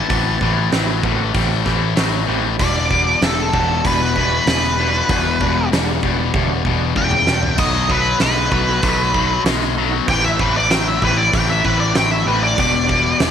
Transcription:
Already playing: lead electric guitar A5
0.07 picked electric bass A1, distorted electric guitar A2 E3, tonewheel organ B3 C4 F#4, kick, open hi-hat
0.38 picked electric bass A1, distorted electric guitar A2 E3, tonewheel organ B3 C4 F#4, kick
0.71 picked electric bass A1, distorted electric guitar A2 F#3, tonewheel organ B3 C4 G4, snare, open hi-hat
1.03 picked electric bass A1, distorted electric guitar A2 E3, tonewheel organ B3 C4 F#4, kick
1.34 picked electric bass A1, distorted electric guitar A2 E3, tonewheel organ B3 C4 G4, kick, open hi-hat
1.64 picked electric bass A1, distorted electric guitar A2 E3, tonewheel organ B3 C4 G4, kick, snare
1.95 picked electric bass A1, distorted electric guitar A2 F#3, tonewheel organ B3 C4 G4, snare, open hi-hat
2.26 picked electric bass A1, distorted electric guitar A2 E3, tonewheel organ B3 C4 G4
2.58 picked electric bass E1, distorted electric guitar E2 B2, tonewheel organ G3 D4 F#4, lead electric guitar D5, kick, open hi-hat
2.89 distorted electric guitar E2 B2, tonewheel organ G3 D4 F#4, kick
3.21 picked electric bass E1, distorted electric guitar E2 C#3, tonewheel organ G3 D4 G4, lead electric guitar A4, snare, open hi-hat
3.52 picked electric bass E1, distorted electric guitar E2 B2, tonewheel organ G3 D4 F#4, kick
3.84 picked electric bass E1, distorted electric guitar E2 B2, tonewheel organ G3 D4 F#4, lead electric guitar B4, kick, open hi-hat
4.13 distorted electric guitar E2 B2, tonewheel organ G3 D4 F#4, kick
4.46 picked electric bass E1, distorted electric guitar E2 C#3, tonewheel organ G3 D4 G4, lead electric guitar B4, snare, open hi-hat
4.63 snare
4.78 distorted electric guitar E2 B2, tonewheel organ G3 D4 F#4
5.09 picked electric bass E1, distorted electric guitar E2 B2, tonewheel organ G3 D4 F#4, kick, open hi-hat
5.40 picked electric bass E1, distorted electric guitar E2 B2, tonewheel organ G3 D4 F#4, kick
5.71 picked electric bass E1, distorted electric guitar E2 C#3, tonewheel organ G3 D4 F#4, snare, open hi-hat
6.03 picked electric bass E1, distorted electric guitar E2 B2, tonewheel organ G3 D4 F#4, kick
6.33 picked electric bass E1, distorted electric guitar E2 B2, tonewheel organ G3 D4 F#4, kick, high tom
6.64 picked electric bass E1, distorted electric guitar E2 B2, tonewheel organ G3 D4, kick
6.68 tonewheel organ F#4
6.95 picked electric bass E1, distorted electric guitar E2 C#3, tonewheel organ G3 D4 F#4, lead electric guitar G5, kick
7.11 mid tom
7.26 picked electric bass E1, distorted electric guitar E2 B2, tonewheel organ G3 D4 F#4, snare
7.43 floor tom
7.56 picked electric bass B1, distorted electric guitar B2 F#3, tonewheel organ A3 D#4 F#4, lead electric guitar D#5, kick, open hi-hat, crash
7.88 distorted electric guitar B2 F#3, tonewheel organ A3 D#4 F#4, lead electric guitar B4, kick
8.20 picked electric bass B1, distorted electric guitar B2 G#3, tonewheel organ A3 D#4 F#4, lead electric guitar B4, snare, open hi-hat
8.51 picked electric bass B1, distorted electric guitar B2 F#3, tonewheel organ A3 D#4 A4, kick
8.82 picked electric bass B1, distorted electric guitar B2 F#3, tonewheel organ A3 D#4 A4, kick, open hi-hat
9.13 distorted electric guitar B2 F#3, tonewheel organ A3 D#4 F#4, kick
9.44 picked electric bass B1, distorted electric guitar B2 G#3, tonewheel organ A3 D#4 F#4, snare, open hi-hat
9.62 snare
9.76 distorted electric guitar B2 F#3, tonewheel organ A3 D#4 F#4
10.06 picked electric bass A1, tonewheel organ B3 C4 G4, lead electric guitar G5, kick, open hi-hat
10.10 distorted electric guitar A2 E3
10.24 lead electric guitar E5
10.36 picked electric bass A1, distorted electric guitar A2, tonewheel organ B3 C4 G4, kick
10.40 distorted electric guitar E3, lead electric guitar B4
10.56 lead electric guitar D5
10.68 picked electric bass A1, distorted electric guitar A2 F#3, tonewheel organ B3 C4 G4, lead electric guitar G5, snare, open hi-hat
10.87 lead electric guitar E5
11.00 picked electric bass A1, distorted electric guitar A2 E3, tonewheel organ B3 C4 G4, lead electric guitar B4, kick
11.18 lead electric guitar D5
11.32 picked electric bass A1, distorted electric guitar A2 E3, tonewheel organ B3 C4 G4, lead electric guitar G5, kick, open hi-hat
11.49 lead electric guitar E5
11.63 picked electric bass A1, distorted electric guitar A2 E3, tonewheel organ B3 C4 E4, lead electric guitar B4, kick
11.80 lead electric guitar D5
11.92 picked electric bass A1, distorted electric guitar A2 F#3, tonewheel organ B3 C4 G4, snare, open hi-hat
11.97 lead electric guitar G5
12.11 lead electric guitar E5
12.24 picked electric bass A1, distorted electric guitar A2 E3, tonewheel organ B3 C4 G4, lead electric guitar B4
12.43 lead electric guitar D5
12.55 picked electric bass E1, distorted electric guitar E2, tonewheel organ G3 D4 F#4, kick, open hi-hat
12.59 distorted electric guitar B2, lead electric guitar D5
12.85 tonewheel organ G3 D4 F#4
12.89 distorted electric guitar E2 B2, kick
13.17 picked electric bass E1, tonewheel organ G3 D4 G4, snare, open hi-hat
13.21 distorted electric guitar E2 C#3

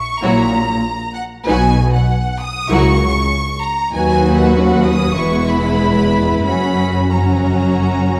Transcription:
Already playing: violin section C#6
0.22 double bass section A#1, cello section A#2, viola section F#3 E4, violin section F#4 C#5 A#5
1.15 violin section F#5
1.45 double bass section B1, cello section B2, viola section F#3 D#4, violin section F#4 B4 G#5
1.94 violin section F#5
2.40 violin section D#6
2.70 double bass section C#2, cello section C#3, viola section F#3 E4, violin section F#4 A#4 C#6
3.62 violin section A#5
3.93 double bass section D#2, cello section D#2, viola section F#3 D#4, violin section F#4 B4 G#5
4.40 violin section F#5
4.55 viola section C#4
4.86 violin section D#6
5.17 double bass section E1, cello section E2, viola section G#3 B3, violin section E4 B4 C#6
5.49 violin section B5
6.45 double bass section F#1, cello section F#2, viola section F#3 C#4, violin section C#4 F#4 B5
7.12 viola section F#3 C#4, violin section C#4 F#4 A#5

